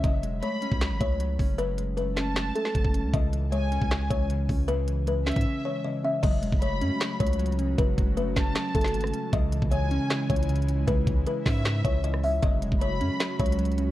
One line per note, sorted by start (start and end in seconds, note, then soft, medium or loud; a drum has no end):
0.04 0.25 F#1 loud
0.04 0.80 F#3 medium
0.04 0.40 D#5 loud
0.04 kick loud
0.04 closed hi-hat medium
0.23 0.42 E1 loud
0.23 0.99 G#3 medium
0.23 closed hi-hat medium
0.42 1.39 A3 medium
0.42 0.97 C#5 medium
0.42 1.16 B5 medium
0.42 closed hi-hat medium
0.62 1.38 C#4 loud
0.62 closed hi-hat medium
0.72 0.92 C#2 loud
0.72 kick medium
0.81 1.19 F#3 medium
0.81 snare loud
0.81 clap medium
0.81 closed hi-hat medium
0.91 1.00 G#1 loud
1.01 1.38 C#2 loud
1.01 1.77 G#3 medium
1.01 1.55 C#5 medium
1.01 kick medium
1.01 closed hi-hat medium
1.20 1.57 F#3 medium
1.20 closed hi-hat medium
1.39 2.52 F#1 loud
1.39 2.15 C#4 medium
1.39 kick medium
1.39 open hi-hat medium
1.58 2.35 F#3 medium
1.58 1.95 B4 loud
1.58 closed hi-hat medium
1.78 2.75 G#3 medium
1.78 closed hi-hat medium
1.97 2.94 A3 medium
1.97 2.52 B4 medium
1.97 closed hi-hat medium
2.16 2.92 C#4 medium
2.16 3.10 A5 medium
2.16 snare medium
2.16 clap medium
2.16 closed hi-hat medium
2.36 2.74 F#3 medium
2.36 snare loud
2.36 clap medium
2.36 closed hi-hat medium
2.56 3.10 A4 medium
2.56 closed hi-hat medium
2.65 snare medium
2.75 2.84 F#1 loud
2.75 3.14 F#3 medium
2.75 kick medium
2.75 closed hi-hat medium
2.85 3.05 F#1 loud
2.85 kick loud
2.94 3.13 C#4 medium
2.94 closed hi-hat medium
3.04 3.13 C#2 loud
3.13 3.79 C#2 loud
3.13 3.89 C#3 loud
3.13 3.50 D#5 loud
3.13 kick loud
3.13 closed hi-hat medium
3.33 4.09 E3 medium
3.33 closed hi-hat medium
3.52 4.49 G#3 medium
3.52 4.07 C#5 medium
3.52 4.26 G#5 medium
3.52 closed hi-hat medium
3.72 4.48 C#4 loud
3.72 closed hi-hat medium
3.81 4.09 C#2 loud
3.81 kick medium
3.91 4.29 C#3 medium
3.91 snare loud
3.91 clap medium
3.91 closed hi-hat medium
4.10 4.48 C#2 loud
4.10 4.87 E3 medium
4.10 4.65 C#5 medium
4.10 kick medium
4.10 closed hi-hat medium
4.30 4.67 C#3 medium
4.30 closed hi-hat medium
4.49 5.33 C#2 loud
4.49 5.25 C#4 medium
4.49 kick medium
4.49 open hi-hat medium
4.68 5.45 C#3 medium
4.68 5.05 B4 loud
4.68 closed hi-hat medium
4.88 5.64 E3 medium
4.88 closed hi-hat medium
5.07 6.04 G#3 medium
5.07 5.62 B4 medium
5.07 closed hi-hat medium
5.26 6.03 C#4 loud
5.26 5.81 E5 medium
5.26 snare medium
5.26 clap medium
5.26 closed hi-hat soft
5.31 closed hi-hat medium
5.36 5.46 G#2 loud
5.36 kick medium
5.36 closed hi-hat medium
5.41 closed hi-hat medium
5.46 5.83 C#3 medium
5.65 6.23 E3 medium
5.65 5.81 C#5 medium
5.84 6.23 C#3 medium
5.84 6.01 D#5 medium
6.04 6.23 C#4 medium
6.04 6.20 E5 medium
6.23 6.44 F#1 loud
6.23 9.30 C#3 medium
6.23 9.30 F#3 medium
6.23 6.99 F#3 medium
6.23 9.30 F#4 medium
6.23 6.59 D#5 loud
6.23 kick loud
6.23 closed hi-hat medium
6.23 crash loud
6.42 6.52 E1 loud
6.42 7.19 G#3 medium
6.42 closed hi-hat medium
6.52 6.83 F#1 loud
6.52 kick medium
6.62 7.59 A3 medium
6.62 7.17 C#5 medium
6.62 7.35 B5 medium
6.62 closed hi-hat medium
6.81 6.91 F#2 loud
6.81 7.57 C#4 loud
6.81 closed hi-hat medium
7.00 7.38 F#3 medium
7.00 snare loud
7.00 clap medium
7.00 closed hi-hat medium
7.20 7.76 C#2 loud
7.20 7.96 G#3 medium
7.20 7.75 C#5 medium
7.20 kick medium
7.20 closed hi-hat medium
7.27 closed hi-hat medium
7.33 closed hi-hat medium
7.39 7.77 F#3 medium
7.39 closed hi-hat medium
7.46 closed hi-hat medium
7.52 closed hi-hat soft
7.59 8.34 C#4 medium
7.59 closed hi-hat medium
7.78 7.97 F#1 loud
7.78 8.54 F#3 medium
7.78 8.14 B4 loud
7.78 kick loud
7.78 closed hi-hat medium
7.97 8.35 F#1 loud
7.97 8.94 G#3 medium
7.97 kick loud
7.97 closed hi-hat medium
8.16 9.14 A3 medium
8.16 8.71 B4 medium
8.16 closed hi-hat medium
8.35 8.55 F#1 loud
8.35 9.12 C#4 medium
8.35 9.29 A5 medium
8.35 kick loud
8.35 snare medium
8.35 clap medium
8.35 closed hi-hat medium
8.55 8.93 F#3 medium
8.55 snare loud
8.55 clap medium
8.55 closed hi-hat medium
8.75 8.96 F#1 loud
8.75 9.30 A4 medium
8.75 kick loud
8.75 closed hi-hat medium
8.81 snare medium
8.81 closed hi-hat medium
8.88 closed hi-hat medium
8.94 9.13 G#1 loud
8.94 9.33 F#3 medium
8.94 closed hi-hat medium
9.01 cross-stick medium
9.01 closed hi-hat medium
9.07 closed hi-hat soft
9.13 9.33 C#4 medium
9.13 closed hi-hat medium
9.32 9.61 C#2 loud
9.32 10.09 C#3 loud
9.32 13.91 C#3 medium
9.32 12.40 G#3 medium
9.32 12.40 E4 medium
9.32 9.69 D#5 loud
9.32 kick loud
9.32 closed hi-hat medium
9.52 10.29 E3 medium
9.52 closed hi-hat medium
9.62 9.99 C#2 loud
9.62 kick medium
9.71 10.68 G#3 medium
9.71 10.26 C#5 medium
9.71 10.45 G#5 medium
9.71 closed hi-hat medium
9.91 10.67 C#4 loud
9.91 closed hi-hat medium
10.10 10.48 C#3 medium
10.10 snare loud
10.10 clap medium
10.10 closed hi-hat medium
10.30 10.86 C#2 loud
10.30 11.06 E3 medium
10.30 10.84 C#5 medium
10.30 kick medium
10.30 closed hi-hat medium
10.36 closed hi-hat medium
10.43 closed hi-hat medium
10.49 10.87 C#3 medium
10.49 closed hi-hat medium
10.56 closed hi-hat medium
10.62 closed hi-hat soft
10.68 11.44 C#4 medium
10.68 closed hi-hat medium
10.88 11.06 C#2 loud
10.88 11.64 C#3 loud
10.88 11.24 B4 loud
10.88 kick loud
10.88 closed hi-hat medium
11.07 11.26 C#2 loud
11.07 11.84 E3 medium
11.07 kick loud
11.07 closed hi-hat medium
11.26 12.23 G#3 medium
11.26 11.81 B4 medium
11.26 closed hi-hat medium
11.46 11.83 G#2 loud
11.46 12.22 C#4 loud
11.46 12.00 E5 medium
11.46 kick loud
11.46 snare medium
11.46 clap medium
11.46 open hi-hat medium
11.65 12.03 C#3 medium
11.65 snare loud
11.65 clap medium
11.65 closed hi-hat medium
11.85 12.40 C#2 loud
11.85 12.43 E3 medium
11.85 12.01 C#5 medium
11.85 kick medium
11.85 closed hi-hat medium
12.04 12.43 C#3 medium
12.04 12.20 D#5 medium
12.04 closed hi-hat medium
12.14 cross-stick medium
12.23 12.43 C#4 medium
12.23 12.40 E5 medium
12.23 open hi-hat medium
12.42 12.64 F#1 loud
12.42 13.91 F#3 medium
12.42 13.19 F#3 medium
12.42 13.91 F#4 medium
12.42 12.79 D#5 loud
12.42 kick loud
12.42 closed hi-hat medium
12.62 12.71 E1 loud
12.62 13.38 G#3 medium
12.62 closed hi-hat medium
12.72 13.02 F#1 loud
12.72 kick loud
12.81 13.78 A3 medium
12.81 13.36 C#5 medium
12.81 13.55 B5 medium
12.81 closed hi-hat medium
13.01 13.10 F#2 loud
13.01 13.77 C#4 loud
13.01 closed hi-hat medium
13.20 13.57 F#3 medium
13.20 snare loud
13.20 clap medium
13.20 closed hi-hat medium
13.39 13.91 C#2 loud
13.39 13.91 G#3 medium
13.39 13.91 C#5 medium
13.39 kick loud
13.39 closed hi-hat medium
13.46 closed hi-hat medium
13.52 closed hi-hat medium
13.59 13.91 F#3 medium
13.59 closed hi-hat medium
13.65 closed hi-hat medium
13.72 closed hi-hat soft
13.78 13.91 C#4 medium
13.78 closed hi-hat medium